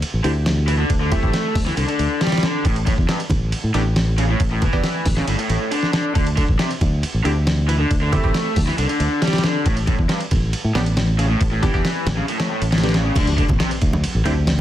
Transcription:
0.02 muted fingered electric bass stroke, ride
0.14 A1
0.24 D2 D3 C4 E4 G4, ride
0.46 snare, ride
0.67 E3, ride
0.79 D3
0.90 D2, kick, ride
1.01 D3
1.11 A3 C4 E4 G4, kick, ride, high conga, low conga
1.23 A1 C4 E4 G4, kick
1.34 snare, ride
1.55 D2, kick, open hi-hat, high conga, low conga
1.66 E3, snare
1.77 C2 D3, ride
1.88 D3, ride
1.99 D2, ride
2.21 G3, snare, ride
2.27 snare, ride
2.32 snare, ride
2.38 snare, ride
2.43 D3, snare, ride
2.65 A1 A2, kick, ride
2.76 ride
2.86 A2, kick, ride, high conga
2.98 E2, kick
3.08 G2, snare, ride
3.20 ride
3.30 A1, kick, ride, high conga, low conga
3.52 muted fingered electric bass stroke, ride
3.64 A2
3.74 A1 A2 B3 D4 G4, ride
3.96 snare, ride
4.18 C#3, ride
4.29 A2
4.40 A1, kick, ride
4.51 A2
4.62 E3, kick, ride, high conga, low conga
4.73 E2 B3 D4 G4, kick
4.84 snare, ride
5.06 A1, kick, open hi-hat, high conga, low conga
5.17 C#3, snare
5.27 G1 A2, ride
5.39 A2, ride
5.50 A1, ride
5.71 D3, ride
5.83 snare
5.93 D3, snare, ride
6.15 D2 D3, kick, ride
6.27 ride
6.37 D3, kick, ride, high conga
6.49 A1, kick
6.59 C3, snare, ride
6.71 ride
6.81 D2, kick, ride, high conga, low conga
7.03 muted fingered electric bass stroke, ride
7.14 A1
7.25 D2 D3 C4 E4 G4, ride
7.47 snare, ride
7.69 E3, ride
7.80 D3
7.91 D2, kick, ride
8.02 D3
8.12 A3 C4 E4 G4, kick, ride, high conga, low conga
8.24 A1 C4 E4 G4, kick
8.34 snare, ride
8.56 D2, kick, open hi-hat, high conga, low conga
8.67 E3, snare
8.78 C2 D3, ride
8.89 D3, ride
9.00 D2, ride
9.22 G3, snare, ride
9.27 snare, ride
9.33 snare, ride
9.38 snare, ride
9.44 D3, snare, ride
9.66 A1 A2, kick, ride
9.77 ride
9.87 A2, kick, ride, high conga
9.99 E2, kick
10.09 G2, snare, ride
10.20 ride
10.31 A1, kick, ride, high conga, low conga
10.53 muted fingered electric bass stroke, ride
10.64 A2
10.75 A1 A2 B3 D4 G4, snare, ride
10.86 ride
10.97 snare, ride
11.19 C#3, ride
11.30 A2
11.41 A1, kick, ride
11.52 A2
11.63 E3 B3 D4 G4, kick, ride, high conga, low conga
11.74 E2 B3 D4 G4, kick
11.85 snare, ride
12.06 A1, snare, ride, high conga, low conga
12.18 C#3
12.28 A2, ride
12.40 A2, snare, ride
12.50 A2
12.62 A1, ride
12.72 A2, snare, ride
12.78 snare, ride
12.83 D3 B3 D4 G4, snare, ride
12.89 snare, ride
12.94 C#3, snare, ride
13.06 C#3
13.15 D2 D3, kick, crash, ride, impact, high conga
13.27 ride
13.38 D3, kick, ride
13.49 A1, kick, muted conga, high conga, low conga
13.60 C3, snare, ride
13.71 ride
13.82 D2, kick, ride, muted conga
13.93 muted conga, high conga
14.04 muted fingered electric bass stroke, ride
14.15 A1
14.25 D2 D3 C4 E4 G4, ride, high conga
14.47 snare, ride

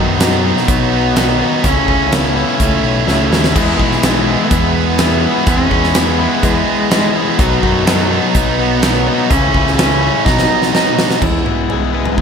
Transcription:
Already playing: F#2 B2 D#3 F#3 B3 D#4
0.18 B2 D#3 F#3 B3 D#4, snare, closed hi-hat
0.42 F#3 B3 D#4
0.57 snare
0.68 B1 B3, kick, closed hi-hat
0.92 F#3 B3 D#4
1.15 D#3 F#3 B3 D#4, snare, closed hi-hat
1.40 F#3 B3 D#4
1.63 C#2 C#3 A3 C#4 E4, kick, closed hi-hat
1.88 C#2 A3 C#4 E4, kick
2.12 C#3 A3 B3 C#4 E4, snare, closed hi-hat
2.35 A3 C#4 E4
2.60 C#2 A3, kick, closed hi-hat
2.83 B1 A3 C#4 E4
3.06 C#2 C#3 A3 C#4 E4, snare
3.30 D#2 A3 C#4 E4, snare
3.44 snare
3.54 E2 E3 G#3 B3 E4, kick, crash
3.78 B1 G#3 B3 E4, kick
3.92 snare
4.03 E3 G#3 B3 E4, snare, closed hi-hat
4.27 G#3 B3 E4
4.51 E2 B3, kick, closed hi-hat
4.75 G#3 B3 E4
4.99 E3 G#3 B3 E4, snare, closed hi-hat
5.23 G#3 B3 E4
5.47 E2 E3 G#3 B3 C#4 E4, kick, closed hi-hat
5.71 E2 G#3 B3 E4, kick
5.84 snare
5.95 E3 G#3 B3 E4, snare, closed hi-hat
6.19 G#3 B3 E4
6.43 E2 G#3, kick, closed hi-hat
6.67 G#3 B3 E4
6.90 E3 G#3 B3 E4, snare, closed hi-hat
7.15 G#3 B3 E4
7.38 B1 B2 F#3 B3 D#4, kick, closed hi-hat
7.62 F#2 F#3 B3 D#4, kick
7.85 B2 F#3 B3 D#4, snare, closed hi-hat
8.09 F#3 B3 D#4
8.35 B1 B3, kick, closed hi-hat
8.58 F#3 B3 D#4
8.82 B2 F#3 B3 D#4, snare, closed hi-hat
9.06 F#3 B3 D#4
9.30 C#2 C#3 E3 A3 C#4 E4, kick, closed hi-hat
9.54 C#2 E3 A3 E4, kick
9.67 snare
9.77 C#3 E3 A3 C#4 E4, snare, closed hi-hat
10.01 E3 A3 E4
10.25 B1 B2 F#3 B3 D#4, kick, snare
10.39 snare
10.50 F#3 B3 D#4
10.62 snare
10.73 B2 F#3 B3 D#4, snare
10.96 F#3 B3 D#4, snare
11.11 snare
11.20 E2 E3 G#3 B3 E4, kick, floor tom, crash
11.45 B2 G#3 B3 E4, mid tom
11.69 E3 G#3 B3 E4, floor tom
11.92 E3 G#3 B3 E4
12.05 floor tom
12.17 E2 E3 F#3 G#3, kick

